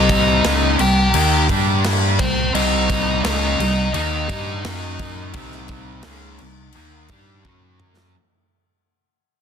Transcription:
0.00 0.40 C2 medium
0.00 0.43 C3 medium
0.00 0.43 G3 loud
0.00 0.44 C4 loud
0.00 0.76 D#4 medium
0.00 0.76 D#5 loud
0.09 kick medium
0.09 crash medium
0.44 0.77 C#2 medium
0.44 0.78 C#3 medium
0.44 0.79 G#3 loud
0.44 0.79 C#4 loud
0.44 snare loud
0.44 crash medium
0.79 1.12 C2 medium
0.79 1.07 C3 medium
0.79 1.08 G3 medium
0.79 1.46 G4 medium
0.79 1.46 G5 medium
0.79 crash medium
1.14 1.46 D#2 loud
1.14 1.48 D#3 loud
1.14 1.48 A#3 loud
1.14 1.48 D#4 loud
1.14 crash medium
1.49 2.15 G2 loud
1.49 2.18 G3 loud
1.49 2.18 D4 medium
1.49 2.18 G4 loud
1.49 kick medium
1.49 crash medium
1.84 snare loud
1.84 crash medium
2.19 2.52 C2 medium
2.19 2.48 C3 medium
2.19 2.48 G3 medium
2.19 2.52 C4 medium
2.19 2.52 C5 medium
2.19 kick loud
2.19 crash medium
2.54 3.20 C2 medium
2.54 3.23 C3 medium
2.54 3.23 G3 loud
2.54 3.23 C4 loud
2.54 3.21 D#4 medium
2.54 3.23 D#5 loud
2.54 crash medium
2.90 kick medium
2.90 crash medium
3.24 3.57 C#2 medium
3.24 3.58 C#3 medium
3.24 3.58 G#3 loud
3.24 3.59 C#4 loud
3.24 3.91 D#4 medium
3.24 3.93 D#5 loud
3.24 snare loud
3.24 crash medium
3.59 3.92 C2 medium
3.59 3.87 C3 medium
3.59 3.88 G3 medium
3.59 crash medium
3.93 4.27 D#2 loud
3.93 4.28 D#3 loud
3.93 4.28 A#3 loud
3.93 7.42 D#4 medium
3.93 4.29 D#4 loud
3.93 7.42 D#5 medium
3.93 crash medium
4.28 4.62 G2 medium
4.28 4.63 G3 medium
4.28 4.63 D4 medium
4.28 4.64 G4 loud
4.28 kick medium
4.28 crash medium
4.64 5.31 F#2 loud
4.64 5.33 F#3 loud
4.64 5.34 C#4 medium
4.64 5.34 F#4 loud
4.64 snare loud
4.64 crash medium
4.99 kick medium
4.99 crash medium
5.33 6.01 C2 medium
5.33 6.04 C3 medium
5.33 6.04 G3 loud
5.33 6.04 C4 loud
5.33 kick loud
5.33 crash medium
5.52 snare soft
5.68 kick medium
5.68 crash medium
6.03 6.38 C#2 medium
6.03 6.39 C#3 medium
6.03 6.39 G#3 medium
6.03 6.39 C#4 loud
6.03 snare loud
6.03 crash medium
6.38 6.74 C2 medium
6.38 6.68 C3 medium
6.38 6.69 G3 medium
6.38 crash medium
6.73 7.09 D#2 loud
6.73 7.10 D#3 medium
6.73 7.10 A#3 loud
6.73 7.10 D#4 loud
6.73 crash medium
7.08 7.43 G2 medium
7.08 7.44 G3 medium
7.08 7.45 D4 medium
7.08 7.45 G4 loud
7.08 kick medium
7.08 crash medium
7.45 8.12 F#2 loud
7.45 8.15 F#3 medium
7.45 8.15 C#4 medium
7.45 8.15 F#4 loud
7.45 kick medium
7.80 mid tom medium
7.97 snare medium

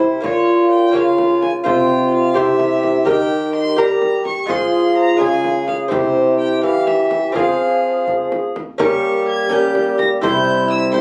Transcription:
0.00 0.20 C3 soft
0.00 0.23 C3 medium
0.00 0.20 E4 soft
0.00 0.25 E4 medium
0.00 0.21 C5 soft
0.00 0.23 C5 medium
0.00 frame drum soft
0.20 0.97 A#2 medium
0.20 0.91 A#2 soft
0.20 0.90 A#3 soft
0.20 0.91 F4 soft
0.20 1.65 F4 medium
0.20 0.94 F4 medium
0.20 0.93 C#5 soft
0.20 frame drum medium
0.25 0.70 C#5 medium
0.71 0.97 G5 medium
0.91 1.62 C#3 soft
0.91 1.62 A#3 soft
0.91 1.62 F4 soft
0.91 1.00 G4 medium
0.91 1.63 C#5 soft
0.91 frame drum soft
0.95 1.65 C#3 medium
0.95 1.64 F4 medium
0.95 1.41 F5 medium
1.18 frame drum soft
1.42 1.50 G#5 medium
1.42 frame drum soft
1.64 2.33 C3 medium
1.64 2.35 C3 medium
1.64 2.35 C4 medium
1.64 2.33 F4 soft
1.64 2.38 F4 medium
1.64 2.34 C5 soft
1.64 2.12 G5 medium
1.64 frame drum medium
2.14 2.38 F5 medium
2.34 3.09 C3 medium
2.34 3.04 C3 medium
2.34 3.06 E4 medium
2.34 3.04 G4 soft
2.34 3.06 G4 medium
2.34 3.05 C5 soft
2.34 3.07 E5 medium
2.34 frame drum soft
2.60 frame drum soft
2.83 frame drum soft
3.05 3.80 D#3 medium
3.05 3.74 D#3 medium
3.05 3.80 D#4 medium
3.05 3.75 G4 soft
3.05 3.77 G4 medium
3.05 3.75 A#4 soft
3.05 3.54 G5 medium
3.05 frame drum medium
3.55 3.80 C6 medium
3.76 4.24 G3 medium
3.76 4.21 G3 soft
3.76 4.46 G4 soft
3.76 4.23 G4 medium
3.76 4.48 G4 medium
3.76 4.47 A#4 soft
3.76 4.25 A#5 medium
3.76 frame drum soft
4.02 frame drum soft
4.25 4.51 C#6 loud
4.25 frame drum soft
4.46 5.22 F3 medium
4.46 5.16 F3 medium
4.46 5.15 G#3 soft
4.46 5.16 F4 medium
4.46 5.61 F4 medium
4.46 5.17 G#4 soft
4.46 5.17 G#4 medium
4.46 frame drum medium
4.50 4.97 C6 medium
4.98 5.20 A#5 medium
5.17 5.88 C#3 soft
5.17 5.92 C#3 medium
5.17 5.88 G#3 soft
5.17 5.88 F4 soft
5.17 5.89 G#4 soft
5.17 5.90 G#4 medium
5.17 frame drum soft
5.21 5.67 G#5 medium
5.44 frame drum soft
5.68 5.76 F5 medium
5.68 frame drum soft
5.88 6.60 C3 soft
5.88 7.30 C4 soft
5.88 7.30 E4 soft
5.88 6.59 E4 medium
5.88 7.31 G4 soft
5.88 7.33 G4 medium
5.88 6.38 C5 medium
5.88 frame drum medium
5.92 6.62 C3 medium
6.39 6.63 G5 medium
6.63 7.32 E3 soft
6.63 7.37 E3 medium
6.63 7.34 G4 medium
6.63 6.88 F5 medium
6.63 frame drum soft
6.87 7.35 E5 medium
6.87 frame drum soft
7.11 frame drum soft
7.32 8.52 F3 soft
7.32 8.56 F3 medium
7.32 8.75 C4 soft
7.32 8.75 F4 soft
7.32 8.76 G#4 soft
7.32 8.54 G#4 medium
7.32 8.42 G#4 medium
7.32 8.07 F5 medium
7.32 frame drum medium
8.08 frame drum soft
8.32 frame drum soft
8.56 frame drum soft
8.78 10.19 G3 medium
8.78 9.48 A#3 medium
8.78 9.48 C#4 medium
8.78 9.48 G4 medium
8.78 9.49 A#4 medium
8.78 9.25 C#6 medium
8.78 frame drum medium
9.28 9.54 G#6 medium
9.49 10.22 A#3 medium
9.49 10.20 C#4 medium
9.49 10.22 G4 medium
9.49 10.21 A#4 medium
9.49 9.98 G6 medium
9.49 frame drum soft
9.75 frame drum medium
9.99 10.07 A#6 loud
9.99 frame drum medium
10.21 11.01 C3 medium
10.21 10.94 G3 medium
10.21 10.91 E4 medium
10.21 10.94 E4 medium
10.21 10.92 C5 medium
10.21 10.70 G6 loud
10.21 frame drum medium
10.70 10.93 E6 medium
10.93 11.01 G3 medium
10.93 11.01 E4 medium
10.93 11.01 C5 medium
10.93 11.01 C6 loud
10.93 frame drum soft

